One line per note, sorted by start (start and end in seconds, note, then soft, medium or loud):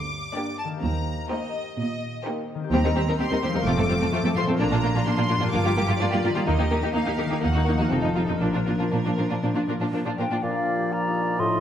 0.00 0.25 D2 soft
0.00 0.75 G2 soft
0.00 0.68 A#3 soft
0.00 0.72 G4 soft
0.00 0.82 D5 soft
0.00 0.58 D6 medium
0.35 0.71 A#3 soft
0.35 0.71 D4 soft
0.35 0.70 G4 soft
0.35 0.70 D5 soft
0.59 0.67 A5 medium
0.64 2.54 D#3 soft
0.69 3.61 A#3 soft
0.74 2.63 G4 soft
0.78 2.67 C5 soft
0.82 1.20 D#2 soft
0.82 1.29 A#5 soft
1.30 1.65 A#3 soft
1.30 1.65 D#4 soft
1.30 1.65 G4 soft
1.30 1.65 C5 soft
1.30 1.76 D#5 medium
1.77 2.15 A#2 soft
1.77 2.25 D#5 medium
2.25 2.61 A#3 soft
2.25 2.61 D#4 soft
2.25 2.60 G4 soft
2.25 2.60 C5 soft
2.55 3.59 D#3 soft
2.59 3.51 C4 soft
2.64 3.63 G4 soft
2.68 2.83 D#2 medium
2.68 4.60 C5 soft
2.72 2.77 D#2 medium
2.72 2.77 G3 medium
2.72 2.77 C4 medium
2.72 2.78 G4 soft
2.72 3.16 A#5 medium
2.84 2.89 D#2 soft
2.84 2.89 G3 soft
2.84 2.89 C4 soft
2.84 2.89 D#4 soft
2.84 2.89 A#4 soft
2.96 3.00 D#2 soft
2.96 3.01 G3 soft
2.96 3.00 C4 soft
2.96 3.00 G4 soft
2.96 3.00 C5 soft
3.07 3.12 D#2 soft
3.07 3.12 G3 soft
3.07 3.12 C4 soft
3.07 3.13 D#4 soft
3.07 3.13 A#4 soft
3.19 3.24 D#2 medium
3.19 3.24 G3 medium
3.19 3.23 C4 medium
3.19 3.24 C4 medium
3.19 3.24 G4 soft
3.19 3.66 C6 medium
3.31 3.36 D#2 soft
3.31 3.36 G3 soft
3.31 3.35 C4 soft
3.31 3.36 D#4 soft
3.31 3.36 A#4 soft
3.42 3.47 D#2 soft
3.42 3.47 G3 soft
3.42 3.47 C4 soft
3.42 3.47 G4 soft
3.42 3.47 C5 soft
3.48 6.40 F3 soft
3.52 3.59 D#2 soft
3.52 3.58 G3 soft
3.52 4.55 C4 soft
3.52 3.58 C4 soft
3.52 3.59 D#4 soft
3.52 3.60 A#4 soft
3.57 4.49 F4 soft
3.61 3.70 A3 soft
3.61 4.59 A4 soft
3.65 3.76 F1 medium
3.65 3.71 F2 medium
3.65 3.71 A3 soft
3.65 3.70 C4 soft
3.65 3.71 F4 medium
3.65 4.36 D6 medium
3.77 3.82 F2 soft
3.77 3.82 A3 soft
3.77 3.82 C4 soft
3.77 3.83 C4 soft
3.77 3.83 A4 soft
3.88 3.94 F2 soft
3.88 3.93 A3 soft
3.88 3.93 C4 soft
3.88 3.94 F4 soft
3.88 3.94 C5 soft
4.00 4.06 F2 soft
4.00 4.05 A3 soft
4.00 4.05 C4 soft
4.00 4.06 C4 soft
4.00 4.07 A4 soft
4.12 4.17 F2 medium
4.12 4.17 A3 soft
4.12 4.18 A3 medium
4.12 4.17 C4 soft
4.12 4.18 F4 medium
4.24 4.29 F2 soft
4.24 4.29 A3 soft
4.24 4.29 C4 soft
4.24 4.30 C4 soft
4.24 4.30 A4 soft
4.35 4.40 F2 soft
4.35 4.41 A3 soft
4.35 4.41 C4 soft
4.35 4.41 F4 soft
4.35 4.42 C5 soft
4.35 4.44 C6 medium
4.42 5.46 A#2 soft
4.46 4.52 F2 soft
4.46 4.53 A3 soft
4.46 4.53 C4 soft
4.46 6.42 D4 soft
4.46 4.52 A4 soft
4.51 5.38 F4 soft
4.55 4.64 A#2 medium
4.55 4.64 D4 medium
4.55 5.47 A#4 soft
4.59 4.71 A#1 soft
4.59 4.64 A#3 medium
4.59 4.65 A#3 medium
4.59 4.65 D4 medium
4.59 5.05 A#5 medium
4.71 4.76 A#2 soft
4.71 4.77 A#3 soft
4.71 4.77 D4 soft
4.71 4.77 F4 soft
4.83 4.88 A#2 soft
4.83 4.87 A#3 soft
4.83 4.88 D4 soft
4.83 4.89 F4 soft
4.83 4.88 A#4 soft
4.95 5.00 A#2 soft
4.95 5.00 A#3 soft
4.95 5.00 D4 soft
4.95 5.00 F4 soft
5.06 5.11 A#2 soft
5.06 5.11 A#3 medium
5.06 5.11 A#3 soft
5.06 5.11 D4 medium
5.06 5.11 D4 soft
5.06 5.53 C6 medium
5.18 5.23 A#2 soft
5.18 5.22 A#3 soft
5.18 5.22 D4 soft
5.18 5.23 D4 soft
5.18 5.22 F4 soft
5.29 5.34 A#2 soft
5.29 5.34 A#3 soft
5.29 5.34 D4 soft
5.29 5.34 F4 soft
5.29 5.33 A#4 soft
5.35 6.40 G2 soft
5.39 5.46 A#2 soft
5.39 5.46 A#3 soft
5.39 5.45 D4 soft
5.39 5.46 D4 soft
5.39 6.42 F4 soft
5.39 5.45 F4 soft
5.44 6.37 G4 soft
5.48 6.42 A#4 soft
5.48 5.99 D6 medium
5.53 5.64 G1 medium
5.53 5.58 G2 medium
5.53 5.58 A#3 medium
5.53 5.58 D4 soft
5.53 5.58 F4 medium
5.53 5.58 F4 soft
5.65 5.70 G2 soft
5.65 5.70 A#3 soft
5.65 5.70 F4 soft
5.65 5.70 G4 soft
5.77 5.82 G2 soft
5.77 5.82 A#3 soft
5.77 5.82 F4 soft
5.77 5.82 G4 soft
5.77 5.82 A#4 soft
5.87 5.93 G2 soft
5.87 5.94 A#3 soft
5.87 5.92 F4 soft
5.87 5.94 F4 soft
5.87 5.92 G4 soft
5.99 6.05 G2 medium
5.99 6.05 A#3 medium
5.99 6.04 D4 medium
5.99 6.05 F4 medium
5.99 6.05 F4 soft
5.99 6.47 D5 medium
6.11 6.17 G2 soft
6.11 6.17 A#3 soft
6.11 6.16 F4 soft
6.11 6.17 F4 soft
6.11 6.16 G4 soft
6.24 6.29 G2 soft
6.24 6.29 A#3 soft
6.24 6.29 F4 soft
6.24 6.28 G4 soft
6.24 6.29 A#4 soft
6.29 7.24 D#3 soft
6.34 6.41 G2 soft
6.34 6.41 A#3 soft
6.34 7.29 D#4 soft
6.34 6.40 F4 soft
6.34 6.40 G4 soft
6.38 7.41 G4 soft
6.43 6.51 A#3 medium
6.43 6.51 D#4 soft
6.43 7.38 A#4 soft
6.47 6.58 D#2 medium
6.47 6.52 D#2 medium
6.47 6.52 A#3 soft
6.47 6.52 D#4 medium
6.47 6.94 D#5 medium
6.59 6.64 D#2 soft
6.59 6.64 A#3 soft
6.59 6.64 D#4 soft
6.59 6.63 G4 soft
6.70 6.75 D#2 soft
6.70 6.76 A#3 soft
6.70 6.76 D#4 soft
6.70 6.75 G4 soft
6.70 6.75 A#4 soft
6.82 6.87 D#2 soft
6.82 6.88 A#3 soft
6.82 6.87 D#4 soft
6.82 6.88 D#4 soft
6.82 6.87 G4 soft
6.93 6.99 D#2 soft
6.93 6.98 A#3 soft
6.93 7.00 A#3 soft
6.93 6.98 D#4 soft
6.93 7.00 D#4 soft
6.93 7.42 F5 medium
7.06 7.12 D#2 soft
7.06 7.11 A#3 soft
7.06 7.11 D#4 soft
7.06 7.11 G4 soft
7.17 7.24 D#2 soft
7.17 7.23 A#3 soft
7.17 7.23 D#4 soft
7.17 7.23 G4 soft
7.17 7.22 A#4 soft
7.25 7.85 D#3 soft
7.25 7.34 D#4 soft
7.25 7.35 G4 soft
7.30 7.36 D#2 soft
7.30 7.36 A#3 soft
7.30 7.77 D#4 soft
7.30 7.36 D#4 soft
7.35 7.89 F#4 soft
7.39 7.46 A#3 soft
7.39 7.48 A#3 soft
7.39 7.46 D#4 soft
7.39 7.48 D#4 soft
7.39 7.92 A#4 soft
7.43 7.55 D#2 soft
7.43 7.48 D#2 soft
7.43 7.91 F#5 medium
7.53 7.61 D#2 soft
7.53 7.61 A#3 soft
7.53 7.58 D#4 soft
7.53 7.61 D#4 soft
7.53 7.58 F#4 soft
7.64 7.73 D#2 soft
7.64 7.73 A#3 soft
7.64 7.73 D#4 soft
7.64 7.70 F#4 soft
7.64 7.70 A#4 soft
7.74 11.60 F3 soft
7.74 7.83 D#4 soft
7.78 7.85 D#2 soft
7.78 7.85 A#3 soft
7.78 8.37 D#4 soft
7.78 7.85 D#4 soft
7.78 7.83 F#4 soft
7.83 8.32 F4 soft
7.87 7.95 C4 soft
7.87 8.42 G4 soft
7.87 8.42 A4 soft
7.91 8.03 F1 soft
7.91 7.97 F2 soft
7.91 7.96 F3 soft
7.91 7.96 D#4 soft
8.02 8.10 F2 soft
8.02 8.09 F3 soft
8.02 8.07 D#4 soft
8.02 8.09 D#4 soft
8.15 8.22 F2 soft
8.15 8.21 F3 soft
8.15 8.21 D#4 soft
8.15 8.21 F4 soft
8.24 10.36 A#2 soft
8.24 8.34 F3 soft
8.24 8.33 D#4 soft
8.29 8.35 F2 soft
8.29 11.35 D4 soft
8.29 8.34 D#4 soft
8.33 10.58 F4 soft
8.38 8.46 A#3 soft
8.38 8.45 D4 soft
8.38 11.39 A#4 soft
8.38 9.93 A#4 soft
8.42 8.54 A#1 soft
8.42 8.47 A#2 soft
8.42 8.47 F3 soft
8.42 8.47 D4 soft
8.53 8.60 A#2 soft
8.53 8.60 F3 soft
8.53 8.59 D4 soft
8.53 8.60 D4 soft
8.53 8.59 F4 soft
8.66 8.73 A#2 soft
8.66 8.73 F3 soft
8.66 8.73 D4 soft
8.66 8.71 F4 soft
8.66 8.72 A#4 soft
8.78 8.85 A#2 soft
8.78 8.86 F3 soft
8.78 8.84 D4 soft
8.78 8.86 D4 soft
8.78 8.84 F4 soft
8.91 8.98 A#2 soft
8.91 8.98 F3 soft
8.91 8.96 A#3 soft
8.91 8.96 D4 soft
8.91 8.98 D4 soft
9.05 9.11 A#2 soft
9.05 9.11 F3 soft
9.05 9.10 D4 soft
9.05 9.11 D4 soft
9.05 9.10 F4 soft
9.17 9.23 A#2 soft
9.17 9.23 F3 soft
9.17 9.23 D4 soft
9.17 9.23 F4 soft
9.17 9.22 A#4 soft
9.30 9.35 A#2 soft
9.30 9.36 F3 soft
9.30 9.35 D4 soft
9.30 9.36 D4 soft
9.30 9.35 F4 soft
9.43 9.48 A#2 soft
9.43 9.48 F3 soft
9.43 9.48 A#3 soft
9.43 9.48 D4 soft
9.55 9.60 A#2 soft
9.55 9.60 F3 soft
9.55 9.60 D4 soft
9.55 9.60 F4 soft
9.68 9.73 A#2 soft
9.68 9.73 F3 soft
9.68 9.73 D4 soft
9.68 9.74 F4 soft
9.68 9.74 A#4 soft
9.80 9.85 A#2 soft
9.80 9.85 F3 soft
9.80 9.85 D4 soft
9.80 9.86 D4 soft
9.80 9.86 F4 soft
9.93 9.98 A#2 soft
9.93 9.98 F3 soft
9.93 9.99 A#3 soft
9.93 9.98 D4 soft
9.93 9.99 D4 soft
10.05 10.11 A#2 soft
10.05 10.10 F3 soft
10.05 10.10 D4 soft
10.05 10.11 D4 soft
10.05 10.11 F4 soft
10.18 10.23 A#2 soft
10.18 10.23 F3 soft
10.18 10.23 D4 soft
10.18 10.24 F4 soft
10.18 10.24 A#4 soft
10.18 10.44 G5 soft
10.31 10.36 A#2 soft
10.31 10.36 F3 soft
10.31 10.36 D4 soft
10.31 10.36 F4 soft
10.43 11.41 A#2 soft
10.43 11.60 F3 soft
10.43 11.35 D4 soft
10.43 10.89 F4 soft
10.43 10.89 D5 soft
10.43 10.94 F5 soft
10.59 10.90 F4 soft
10.76 11.03 G4 soft
10.92 11.22 F4 soft
10.92 11.39 F4 soft
10.92 11.41 D5 soft
10.92 11.41 A#5 medium
11.07 11.34 D#4 soft
11.38 11.60 A2 soft
11.38 11.60 D#4 soft
11.38 11.60 F4 soft
11.38 11.60 D#5 soft
11.38 11.60 C6 medium
11.55 11.60 F4 soft